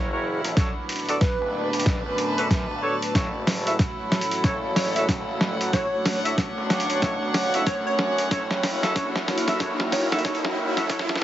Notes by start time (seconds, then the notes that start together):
Already playing: F#1 A#3 E4 F#4 A#4 C#5 F#5
0.12 E4 F#4 A#4 C#5
0.44 A#1, closed hi-hat
0.57 A3 D4 F#4 A4 B4 C#5, kick, snare, closed hi-hat
0.88 B4, closed hi-hat
0.92 closed hi-hat
0.96 closed hi-hat
0.99 closed hi-hat
1.05 closed hi-hat
1.09 D4 F#4 A4 D5, closed hi-hat
1.21 B4, kick, snare, closed hi-hat
1.41 F#1 A5
1.73 F#1, closed hi-hat
1.80 closed hi-hat
1.86 kick, snare, closed hi-hat
2.06 F#2
2.18 closed hi-hat
2.38 D4 F#4 A4 B4, closed hi-hat
2.50 kick, snare, closed hi-hat
2.70 E1
2.83 D4 F#4 A4 C#5
3.03 closed hi-hat
3.15 F#1 E4 F#4 A4 C#5, kick, snare, closed hi-hat, riser
3.47 snare, open hi-hat
3.52 A4
3.64 E4 F#4 A4 E5 F#5, closed hi-hat
3.79 kick, snare, closed hi-hat
4.12 snare, closed hi-hat
4.21 closed hi-hat
4.31 closed hi-hat
4.44 F#1 E4 F#4 A4 C#5, kick, snare, closed hi-hat
4.76 C#5, snare, open hi-hat
4.96 E4 F#4 A4 E5, closed hi-hat
5.09 F#1, kick, snare, closed hi-hat
5.41 snare
5.60 A1, closed hi-hat
5.73 D4 E4 F#4 A4 C#5, kick, snare, closed hi-hat
6.05 snare, open hi-hat
6.22 E4 F#4 A4 C#5 E5, closed hi-hat
6.38 kick, snare, closed hi-hat
6.57 F#1
6.70 snare, closed hi-hat
6.80 closed hi-hat
6.89 E1, closed hi-hat
7.02 E4 F#4 A4 C#5, kick, snare, closed hi-hat
7.22 E1
7.34 snare, open hi-hat
7.54 E4 F#4 A4 E5, closed hi-hat
7.66 F#2 C#5, kick, snare, closed hi-hat
7.87 C#5
7.99 snare
8.18 closed hi-hat
8.31 F#1 A#3 E4 F#4 A4 C#5, kick, snare, closed hi-hat
8.51 snare
8.63 A#4, snare, open hi-hat
8.83 E4 F#4 A4 E5, snare, closed hi-hat
8.96 E4 F#4 A4 C#5, kick, snare, closed hi-hat
9.16 snare
9.28 snare, closed hi-hat
9.38 closed hi-hat
9.48 E4 F#4 A4 E5, snare, closed hi-hat
9.60 F#1 E4 F#4 A4 C#5, kick, snare, closed hi-hat
9.80 snare
9.92 C#5, snare, open hi-hat
10.12 E4 F#4 A4 E5, snare, closed hi-hat
10.19 closed hi-hat
10.25 F#1 E4 F#4 A4 C#5, kick, snare, closed hi-hat
10.35 closed hi-hat
10.45 snare
10.77 A#1 E4 F#4 A4 E5, snare, closed hi-hat
10.90 A3 D4 E4 F#4 A4 B4 C#5, kick, snare, closed hi-hat
10.99 snare
11.09 B4 A5, snare
11.15 snare